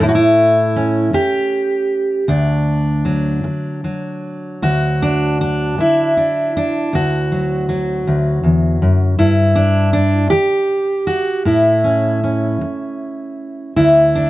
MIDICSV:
0, 0, Header, 1, 3, 480
1, 0, Start_track
1, 0, Time_signature, 6, 3, 24, 8
1, 0, Key_signature, 2, "major"
1, 0, Tempo, 757576
1, 1439, Tempo, 778210
1, 3839, Tempo, 755668
1, 7199, Tempo, 772201
1, 8969, End_track
2, 0, Start_track
2, 0, Title_t, "Steel-string acoustic guitar"
2, 0, Program_c, 0, 25
2, 2, Note_on_c, 0, 45, 87
2, 18, Note_on_c, 0, 64, 98
2, 51, Note_off_c, 0, 64, 0
2, 54, Note_on_c, 0, 66, 86
2, 91, Note_off_c, 0, 66, 0
2, 94, Note_on_c, 0, 64, 104
2, 483, Note_on_c, 0, 61, 53
2, 711, Note_off_c, 0, 45, 0
2, 720, Note_off_c, 0, 64, 0
2, 724, Note_on_c, 0, 67, 104
2, 1413, Note_off_c, 0, 61, 0
2, 1443, Note_off_c, 0, 67, 0
2, 1444, Note_on_c, 0, 38, 74
2, 1449, Note_on_c, 0, 62, 79
2, 1919, Note_on_c, 0, 54, 51
2, 2151, Note_off_c, 0, 38, 0
2, 2400, Note_off_c, 0, 54, 0
2, 2407, Note_on_c, 0, 54, 47
2, 2889, Note_off_c, 0, 62, 0
2, 2890, Note_on_c, 0, 38, 72
2, 2893, Note_on_c, 0, 66, 102
2, 3137, Note_on_c, 0, 62, 86
2, 3368, Note_off_c, 0, 62, 0
2, 3375, Note_on_c, 0, 62, 82
2, 3601, Note_off_c, 0, 38, 0
2, 3606, Note_off_c, 0, 66, 0
2, 3618, Note_on_c, 0, 64, 93
2, 3837, Note_off_c, 0, 62, 0
2, 3845, Note_on_c, 0, 62, 42
2, 4094, Note_off_c, 0, 62, 0
2, 4096, Note_on_c, 0, 62, 81
2, 4326, Note_on_c, 0, 38, 73
2, 4327, Note_off_c, 0, 54, 0
2, 4331, Note_off_c, 0, 62, 0
2, 4332, Note_off_c, 0, 64, 0
2, 4339, Note_on_c, 0, 66, 93
2, 4573, Note_on_c, 0, 54, 45
2, 4800, Note_off_c, 0, 54, 0
2, 4808, Note_on_c, 0, 54, 48
2, 5046, Note_off_c, 0, 38, 0
2, 5053, Note_on_c, 0, 38, 62
2, 5280, Note_off_c, 0, 38, 0
2, 5283, Note_on_c, 0, 40, 62
2, 5523, Note_off_c, 0, 40, 0
2, 5527, Note_on_c, 0, 42, 64
2, 5758, Note_off_c, 0, 66, 0
2, 5759, Note_off_c, 0, 42, 0
2, 5760, Note_on_c, 0, 64, 90
2, 5761, Note_on_c, 0, 43, 80
2, 5763, Note_off_c, 0, 54, 0
2, 5994, Note_on_c, 0, 62, 88
2, 6225, Note_off_c, 0, 62, 0
2, 6232, Note_on_c, 0, 62, 87
2, 6465, Note_off_c, 0, 62, 0
2, 6467, Note_on_c, 0, 67, 108
2, 6471, Note_off_c, 0, 43, 0
2, 6475, Note_off_c, 0, 64, 0
2, 6956, Note_on_c, 0, 66, 92
2, 7195, Note_off_c, 0, 67, 0
2, 7199, Note_off_c, 0, 66, 0
2, 7200, Note_on_c, 0, 45, 72
2, 7206, Note_on_c, 0, 64, 81
2, 7441, Note_on_c, 0, 61, 42
2, 7677, Note_off_c, 0, 61, 0
2, 7687, Note_on_c, 0, 61, 45
2, 7913, Note_off_c, 0, 45, 0
2, 8612, Note_off_c, 0, 61, 0
2, 8628, Note_off_c, 0, 64, 0
2, 8636, Note_on_c, 0, 64, 93
2, 8637, Note_on_c, 0, 38, 66
2, 8878, Note_on_c, 0, 62, 85
2, 8969, Note_off_c, 0, 38, 0
2, 8969, Note_off_c, 0, 62, 0
2, 8969, Note_off_c, 0, 64, 0
2, 8969, End_track
3, 0, Start_track
3, 0, Title_t, "Muted steel-string acoustic guitar strokes"
3, 718, Note_on_c, 9, 29, 69
3, 782, Note_off_c, 9, 29, 0
3, 2159, Note_on_c, 9, 29, 63
3, 2220, Note_off_c, 9, 29, 0
3, 3604, Note_on_c, 9, 29, 64
3, 3666, Note_off_c, 9, 29, 0
3, 6479, Note_on_c, 9, 29, 68
3, 6542, Note_off_c, 9, 29, 0
3, 7921, Note_on_c, 9, 29, 60
3, 7984, Note_off_c, 9, 29, 0
3, 8969, End_track
0, 0, End_of_file